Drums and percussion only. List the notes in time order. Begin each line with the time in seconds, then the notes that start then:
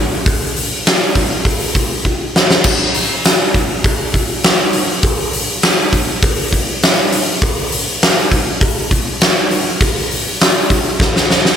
0.26 kick, open hi-hat
0.56 open hi-hat
0.86 snare, open hi-hat
1.15 kick, open hi-hat
1.45 kick, open hi-hat
1.75 kick, open hi-hat
2.05 kick
2.36 snare
2.50 snare
2.64 kick, crash
2.94 open hi-hat
3.25 snare, open hi-hat
3.54 kick, open hi-hat
3.84 kick, open hi-hat
4.14 kick, open hi-hat
4.43 snare, open hi-hat
4.73 open hi-hat
5.02 kick, open hi-hat
5.33 open hi-hat
5.62 snare, open hi-hat
5.93 kick, open hi-hat
6.22 kick, open hi-hat
6.53 kick, open hi-hat
6.82 snare, open hi-hat
7.12 open hi-hat
7.42 kick, open hi-hat
7.72 open hi-hat
8.02 snare, open hi-hat
8.31 kick, open hi-hat
8.61 kick, open hi-hat
8.91 kick, open hi-hat
9.21 snare, open hi-hat
9.51 open hi-hat
9.81 kick, open hi-hat
10.11 open hi-hat
10.40 snare, open hi-hat
10.70 kick, open hi-hat
11.00 kick, snare
11.16 snare
11.30 snare
11.45 snare